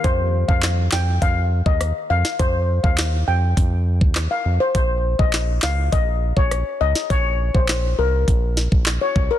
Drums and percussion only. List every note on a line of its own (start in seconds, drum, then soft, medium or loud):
0.04 kick loud
0.04 closed hi-hat medium
0.49 kick medium
0.63 snare loud
0.63 clap medium
0.63 closed hi-hat medium
0.92 snare loud
0.92 clap medium
1.22 kick medium
1.22 closed hi-hat medium
1.66 kick medium
1.81 cross-stick medium
1.81 closed hi-hat medium
2.25 snare medium
2.39 kick loud
2.39 closed hi-hat medium
2.84 kick medium
2.98 snare loud
2.98 clap medium
2.98 closed hi-hat medium
3.57 kick medium
3.57 closed hi-hat medium
4.01 kick medium
4.15 cross-stick loud
4.15 snare loud
4.15 clap medium
4.15 closed hi-hat medium
4.75 kick loud
4.75 closed hi-hat medium
5.19 kick medium
5.33 snare loud
5.33 clap medium
5.33 closed hi-hat medium
5.62 snare loud
5.62 clap medium
5.92 kick medium
5.92 closed hi-hat medium
6.37 kick medium
6.51 cross-stick medium
6.51 closed hi-hat medium
6.95 snare medium
7.10 kick loud
7.10 closed hi-hat medium
7.55 kick medium
7.69 cross-stick medium
7.69 snare loud
7.69 clap medium
7.69 closed hi-hat medium
8.28 kick medium
8.28 closed hi-hat medium
8.57 snare medium
8.72 kick medium
8.86 snare loud
8.86 clap medium
8.86 closed hi-hat medium
9.16 kick medium